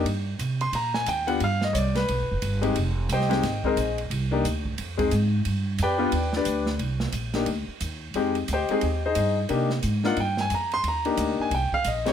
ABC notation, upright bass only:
X:1
M:4/4
L:1/8
Q:"Swing" 1/4=178
K:Cm
V:1 name="Upright bass" clef=bass
G,,2 C,2 B,,2 E,,2 | G,,2 C,,2 (3=B,,, G,,, F,,, G,,,2 | F,,,2 C,,2 A,,,2 B,,,2 | C,,2 D,,2 F,,2 A,,2 |
G,,2 F,,2 E,,2 D,,2 | C,,2 B,,,2 D,, z E,,2 | F,,2 D,, z E,,2 G,,2 | C,2 A,,2 G,,2 F,,2 |
E,,2 D,, z C,, z B,,,2 |]